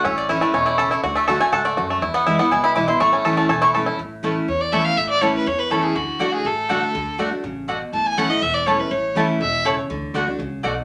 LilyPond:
<<
  \new Staff \with { instrumentName = "Mandolin" } { \time 4/4 \key a \major \tempo 4 = 244 e''8 d''8 cis''8 b'8 cis''8 d''8 e''8 cis''8 | d''8 e''8 fis''8 gis''8 fis''8 d''8 r4 | r8 fis''8 e''8 fis''8 gis''8 b''8 d'''8 c'''8 | cis'''4. a''8 gis''8 cis'''8 r4 |
r4 <a e' cis'' a''>8 r4. <a e' cis'' a''>8 r8 | r4 <a e' cis'' a''>8 r4. <a e' cis'' a''>8 r8 | r4 <a fis' d'' fis''>8 r4. <a fis' d'' fis''>8 r8 | r4 <a fis' d'' fis''>8 r4. <a fis' d'' fis''>8 r8 |
r4 <a e' cis'' a''>8 r4. <a e' cis'' a''>8 r8 | r4 <a e' cis'' a''>8 r4. <a e' cis'' a''>8 r8 | r4 <a fis' d'' fis''>8 r4. <a fis' d'' fis''>8 r8 | }
  \new Staff \with { instrumentName = "Fiddle" } { \time 4/4 \key a \major r1 | r1 | r1 | r1 |
r2 cis''8 d''8 e''8 f''8 | e''8 d''8 cis''8 b'8 cis''8 b'8 a'8 gis'8 | fis'4. gis'8 a'2~ | a'4 r2. |
a''8 gis''8 fis''8 dis''8 e''8 d''8 cis''8 b'8 | cis''4 r4 e''4 cis''8 r8 | r1 | }
  \new Staff \with { instrumentName = "Five-string banjo" } { \time 4/4 \key a \major cis'4 e'8 a8 cis'8 e'8 a'8 e'8 | fis'8 a8 a'8 a8 a'8 a8 fis'8 a8 | e'8 b8 e'8 b8 e'8 e'8 e'8 e'8 | a8 cis'8 a'8 a8 a'8 e'8 a'8 e'8 |
r1 | r1 | r1 | r1 |
r1 | r1 | r1 | }
  \new Staff \with { instrumentName = "Steel-string acoustic guitar" } { \time 4/4 \key a \major << { r4 <e a cis' e'>8 <cis' e'>8 r2 | r4 <d a d' fis'>8 <d' fis'>8 r2 | r4 <e gis b e'>8 <b e'>8 r4 <e gis b e'>8 <b e'>8 | r4 <e a cis' e'>4 r4 <e a cis' e'>8 <cis' e'>8 |
r4 <e a cis' e'>4 r4 <e a cis' e'>4 | r4 <e a cis' e'>4 r4 <e a cis' e'>4 | r4 <d a d' fis'>4 r4 <d a d' fis'>4 | r4 <d a d' fis'>8 <d' fis'>8 r2 |
r4 <e a cis' e'>8 <cis' e'>8 r4 <e a cis' e'>8 <cis' e'>8 | r4 <e a cis' e'>4 r2 | r4 <d a d' fis'>8 <d' fis'>8 r2 | } \\ { a,2 b,4 cis4 | d2 gis,4 fis,4 | e,2 b,2 | a,2 e,2 |
a,2 e,2 | a,2 e,2 | d2 a,2 | d2 cis4 b,4 |
a,2 e,2 | a,2 b,4 cis4 | d2 cis4 b,4 | } >> }
  \new Staff \with { instrumentName = "Upright bass" } { \clef bass \time 4/4 \key a \major a,,2 e,,2 | d,2 cis,4 d,4 | e,2 cis,4 b,,4 | a,,2 e,,2 |
a,,2 e,2 | a,,2 e,2 | d,2 a,,2 | d,2 a,,2 |
a,,2 e,,2 | a,,2 e,,2 | d,4 d,4 cis,4 b,,4 | }
>>